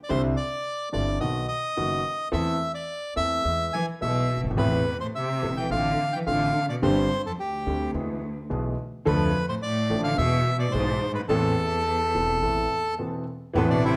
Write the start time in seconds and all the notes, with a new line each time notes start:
0.04 D5
0.09 C2 C3 D3 G3 C4 E4 C5
0.37 D5
0.93 G1 G2 D3 G3 C4 E4 D5
1.20 B1 B2 D#3 F#3 B3 F#4 D#5
1.48 D#5
1.77 F#1 F#2 D#3 F#3 B3 F#4
2.32 E2 E3 A3 C4 A4 E5
2.75 D5
3.16 E2 E3 A3 C4 A4 E5
3.44 E2 E3 G#3 B3 G#4
3.73 E3 G#5
4.01 B1 B2 E3 G#3 B3 G#4 E5
4.36 F#1
4.43 G1
4.50 G#1
4.57 A1 E2 A2 C3 A3 B3 E4 B4
5.00 A2 C5
5.15 C3 E5
5.42 E1 E2 C3 A3 B3 E4
5.57 E3 G5
5.70 A1 A2 D3 A3 C4 F4 F5
6.13 E3 G5
6.26 A1 A2 D3 A3 C4 F4 F5
6.69 B2 D5
6.82 G1 G2 D3 G3 C4 G4 C5
7.26 F2 A4
7.40 D2 G4
7.66 D2 D3 G3 C4 G4
7.94 E2 E3 G#3 B3 G#4
8.50 B1 B2 E3 G#3 B3 G#4
9.05 D2 F2 D3 F3 A3 D4 A4 B4
9.49 A2 C5
9.62 A2 D5
9.90 A1 A2 F3 A3 D4 A4
10.02 D3 F5
10.17 E2 B2 E3 G#3 B3 G#4 E5
10.58 B2 D5
10.72 B1 G#2 B2 E3 G#3 B3 G#4 C5
11.12 G#2 B4
11.25 A1 E2 A4
11.30 A1 A2 E3 B3 C4 A4
12.14 E1 E2 E3 B3 C4 A4
12.42 A1 A2 E3 B3 C4 A4
12.98 E1 E2 E3 B3 C4 A4
13.53 A1 E2 A2 E3 B3 C4
13.58 A4
13.70 B2 D4
13.85 C3 E4